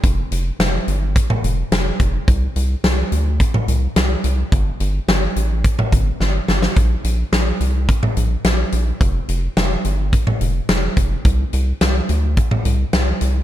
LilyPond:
<<
  \new Staff \with { instrumentName = "Analog synth bass" } { \clef bass \time 4/4 \key f \major \tempo 4 = 107 f,,8 f,,8 f,,8 g,,8. r16 f,,8 f,,8 f,,8 | c,8 c,8 c,8 d,8. r16 c,8 c,8 c,8 | g,,8 g,,8 g,,8 a,,8. r16 g,,8 g,,8 g,,8 | bes,,8 bes,,8 bes,,8 c,8. r16 bes,,8 bes,,8 bes,,8 |
f,,8 f,,8 f,,8 g,,8. r16 f,,8 f,,8 f,,8 | c,8 c,8 c,8 d,8. r16 c,8 c,8 c,8 | }
  \new DrumStaff \with { instrumentName = "Drums" } \drummode { \time 4/4 <hh bd>8 hh8 <hh sn>8 hh8 <hh bd>16 toml16 hh8 <hh sn>8 <hh bd>8 | <hh bd>8 hh8 <hh sn>8 hh8 <hh bd>16 toml16 hh8 <hh sn>8 hh8 | <hh bd>8 hh8 <hh sn>8 hh8 <hh bd>16 toml16 <hh bd>8 sn8 sn16 sn16 | <hh bd>8 hh8 <hh sn>8 hh8 <hh bd>16 toml16 hh8 <hh sn>8 hh8 |
<hh bd>8 hh8 <hh sn>8 hh8 <hh bd>16 toml16 hh8 <hh sn>8 <hh bd>8 | <hh bd>8 hh8 <hh sn>8 hh8 <hh bd>16 toml16 hh8 <hh sn>8 hh8 | }
>>